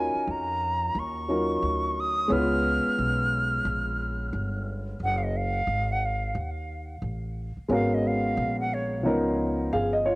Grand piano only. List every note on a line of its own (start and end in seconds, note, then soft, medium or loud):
0.00 1.25 C#4 medium
0.00 1.26 D#4 medium
0.00 1.26 F4 medium
0.00 1.25 F#4 medium
0.00 1.29 A#4 medium
1.28 2.30 F#3 soft
1.28 2.28 C#4 soft
1.28 2.31 D#4 soft
1.28 2.31 F4 soft
1.28 2.31 A#4 soft
2.28 4.95 G#3 medium
2.28 4.96 B3 medium
2.28 4.96 C#4 medium
2.28 2.39 E4 soft
2.28 4.97 B4 medium
2.37 5.00 F4 medium
7.69 9.01 G#3 medium
7.69 9.02 B3 medium
7.69 9.02 C#4 medium
7.69 9.03 F#4 medium
7.69 9.03 A#4 medium
9.03 10.15 F3 medium
9.03 10.15 B3 medium
9.03 10.15 C#4 medium
9.03 9.71 D#4 medium
9.07 9.72 A#4 medium
9.73 9.93 G#4 medium
9.73 9.92 F5 medium
9.93 10.05 D#5 medium
10.06 10.15 F4 medium
10.06 10.15 C#5 medium